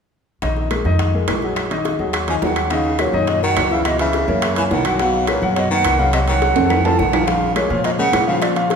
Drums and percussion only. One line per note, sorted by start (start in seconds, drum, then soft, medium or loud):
0.42 high bongo medium
0.42 high timbale medium
0.57 high bongo soft
0.71 high bongo medium
0.71 high timbale medium
0.71 claves medium
0.85 high bongo soft
0.99 high bongo medium
0.99 high timbale medium
1.28 high bongo soft
1.28 low bongo medium
1.28 high timbale medium
1.28 low timbale medium
1.28 claves medium
1.42 high bongo soft
1.56 high bongo medium
1.56 high timbale medium
1.56 claves medium
1.71 high bongo soft
1.71 high timbale medium
1.85 high bongo medium
1.85 high timbale medium
1.99 high bongo soft
2.13 high bongo medium
2.13 high timbale medium
2.13 claves medium
2.28 high timbale medium
2.42 high bongo soft
2.42 low bongo medium
2.42 low timbale medium
2.56 high bongo soft
2.56 high timbale medium
2.56 claves medium
2.70 high bongo medium
2.70 high timbale medium
2.85 high bongo soft
2.99 high bongo medium
2.99 high timbale medium
2.99 claves medium
3.14 high bongo soft
3.27 high bongo medium
3.27 high timbale medium
3.57 high bongo soft
3.57 low bongo medium
3.57 high timbale loud
3.57 low timbale medium
3.57 claves soft
3.71 high bongo soft
3.85 high bongo medium
3.85 high timbale medium
3.85 claves medium
3.99 high bongo soft
3.99 high timbale medium
4.13 high bongo medium
4.13 high timbale medium
4.28 high bongo soft
4.42 high bongo medium
4.42 high timbale medium
4.42 claves medium
4.56 high timbale medium
4.71 high bongo soft
4.71 low bongo medium
4.71 low timbale medium
4.85 high bongo soft
4.85 high timbale medium
4.85 claves soft
4.99 high bongo medium
4.99 high timbale medium
5.14 high bongo soft
5.27 high bongo medium
5.27 high timbale medium
5.27 claves medium
5.43 high bongo soft
5.56 high bongo medium
5.56 high timbale medium
5.85 high bongo soft
5.85 low bongo medium
5.85 high timbale loud
5.85 claves medium
5.99 high bongo soft
6.13 high bongo medium
6.13 high timbale medium
6.13 claves medium
6.28 high bongo soft
6.28 high timbale medium
6.42 high bongo medium
6.42 high timbale medium
6.56 high bongo soft
6.56 high timbale medium
6.70 high bongo medium
6.70 low timbale medium
6.70 claves medium
6.85 low timbale medium
6.99 high bongo soft
6.99 low bongo medium
7.13 high bongo soft
7.13 low timbale medium
7.13 claves medium
7.28 high bongo medium
7.28 high timbale medium
7.42 high bongo soft
7.56 high bongo medium
7.56 high timbale medium
7.56 claves medium
7.70 high bongo soft
7.84 high bongo medium
7.84 high timbale medium
8.13 high bongo soft
8.13 low bongo medium
8.13 high timbale medium
8.13 low timbale medium
8.13 claves soft
8.27 high bongo soft
8.42 high bongo medium
8.42 high timbale medium
8.42 claves medium
8.56 high bongo soft
8.56 high timbale medium
8.70 high bongo medium
8.70 high timbale medium